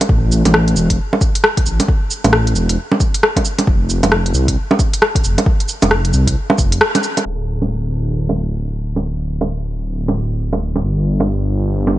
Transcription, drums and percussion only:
0.01 closed hi-hat, low bongo
0.09 kick
0.32 cabasa
0.45 closed hi-hat, low bongo
0.54 cross-stick
0.68 closed hi-hat
0.76 cabasa
0.90 kick, closed hi-hat
1.13 low bongo
1.21 kick, cabasa
1.35 closed hi-hat
1.44 cross-stick
1.57 kick, closed hi-hat
1.66 cabasa
1.80 closed hi-hat, low bongo
1.88 kick
2.11 cabasa
2.24 closed hi-hat, low bongo
2.33 cross-stick
2.47 closed hi-hat
2.56 cabasa
2.69 closed hi-hat
2.92 low bongo
3.00 kick, cabasa
3.14 closed hi-hat
3.23 cross-stick
3.36 kick, closed hi-hat, low bongo
3.45 cabasa
3.58 closed hi-hat, low bongo
3.67 kick
3.90 cabasa
4.03 closed hi-hat, low bongo
4.12 cross-stick
4.26 closed hi-hat
4.35 cabasa
4.48 kick, closed hi-hat
4.71 low bongo
4.79 kick, cabasa
4.93 closed hi-hat
5.02 cross-stick
5.15 kick, closed hi-hat
5.24 cabasa
5.38 closed hi-hat, low bongo
5.46 kick
5.60 closed hi-hat
5.69 cabasa
5.82 closed hi-hat, low bongo, cabasa
5.91 cross-stick
6.05 closed hi-hat
6.14 cabasa
6.27 kick, closed hi-hat
6.50 low bongo
6.58 kick, cabasa
6.72 closed hi-hat
6.81 cross-stick
6.95 closed hi-hat, low bongo
7.03 cabasa
7.17 closed hi-hat, low bongo
7.62 low bongo
8.29 low bongo
8.96 low bongo
9.41 low bongo
10.08 low bongo
10.53 low bongo
10.76 low bongo
11.20 low bongo
11.87 low bongo

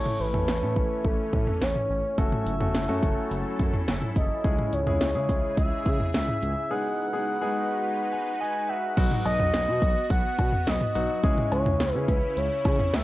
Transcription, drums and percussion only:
0.06 mid tom
0.34 mid tom
0.48 snare
0.76 kick
1.05 kick
1.33 kick
1.47 mid tom
1.62 snare
1.76 mid tom
2.18 kick, closed hi-hat
2.32 mid tom
2.46 closed hi-hat
2.61 mid tom
2.74 snare, closed hi-hat
3.03 kick, closed hi-hat
3.31 closed hi-hat
3.59 kick, closed hi-hat
3.74 mid tom
3.88 snare, closed hi-hat
4.02 mid tom
4.16 kick, closed hi-hat
4.44 kick, closed hi-hat
4.59 mid tom
4.73 closed hi-hat
4.87 mid tom
5.01 snare, closed hi-hat
5.29 kick, closed hi-hat
5.57 kick, closed hi-hat
5.86 kick, closed hi-hat
6.00 mid tom
6.14 snare, closed hi-hat
6.28 mid tom
6.43 closed hi-hat
8.97 kick, closed hi-hat, crash
9.11 mid tom
9.26 closed hi-hat, cowbell
9.40 mid tom
9.54 snare, closed hi-hat
9.82 kick, closed hi-hat
10.10 kick, closed hi-hat
10.38 kick, closed hi-hat, cowbell
10.53 mid tom
10.67 snare, closed hi-hat
10.81 mid tom
10.95 closed hi-hat
11.24 kick, closed hi-hat
11.38 mid tom
11.52 closed hi-hat, cowbell
11.66 mid tom
11.80 snare, closed hi-hat
12.08 kick, closed hi-hat
12.37 closed hi-hat
12.65 kick, closed hi-hat, cowbell
12.79 mid tom
12.94 snare, closed hi-hat

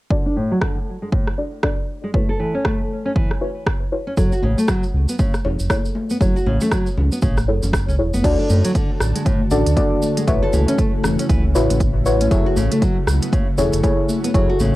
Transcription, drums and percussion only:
0.11 kick
0.61 kick, cross-stick
1.12 kick
1.27 cross-stick
1.63 kick, cross-stick
2.14 kick
2.65 kick, cross-stick
3.16 kick
3.31 cross-stick
3.67 kick, cross-stick
4.17 kick, shaker
4.32 shaker
4.43 high conga
4.58 shaker
4.68 kick, cross-stick, shaker
4.83 shaker
5.09 shaker
5.19 kick, high conga, shaker
5.34 cross-stick, shaker
5.45 low conga
5.59 shaker
5.70 kick, cross-stick, high conga, shaker
5.85 shaker
5.95 high conga
6.10 shaker
6.21 kick, shaker
6.37 shaker
6.47 high conga
6.61 low conga, shaker
6.72 kick, cross-stick, shaker
6.86 shaker
6.97 low conga
7.12 shaker
7.22 kick, high conga, shaker
7.37 cross-stick, shaker
7.63 high conga, low conga, shaker
7.73 kick, cross-stick, shaker
7.89 shaker
8.14 high conga, shaker
8.24 kick, closed hi-hat, crash, high conga, shaker
8.50 high conga, shaker
8.65 closed hi-hat, shaker
8.75 kick, closed hi-hat, shaker
9.01 cross-stick, shaker
9.16 closed hi-hat, shaker
9.25 kick, closed hi-hat, high conga, shaker
9.51 low conga, shaker
9.67 closed hi-hat, shaker
9.77 kick, closed hi-hat, high conga, shaker
10.02 high conga, shaker
10.17 closed hi-hat, shaker
10.28 kick, closed hi-hat, shaker
10.53 high conga, shaker
10.68 closed hi-hat, low conga, shaker
10.78 kick, closed hi-hat, shaker
11.03 cross-stick, low conga, shaker
11.19 closed hi-hat, shaker
11.29 kick, closed hi-hat, high conga, shaker
11.55 shaker
11.70 closed hi-hat, high conga, low conga, shaker
11.80 kick, closed hi-hat, shaker
12.06 shaker
12.21 closed hi-hat, high conga, shaker
12.31 kick, closed hi-hat, high conga, shaker
12.56 high conga, shaker
12.72 closed hi-hat, shaker
12.82 kick, closed hi-hat, shaker
13.07 cross-stick, shaker
13.22 closed hi-hat, shaker
13.32 kick, closed hi-hat, high conga, shaker
13.58 low conga, shaker
13.73 closed hi-hat, shaker
13.83 kick, closed hi-hat, high conga, shaker
14.09 high conga, shaker
14.24 closed hi-hat, shaker
14.34 kick, closed hi-hat, shaker
14.60 high conga, shaker

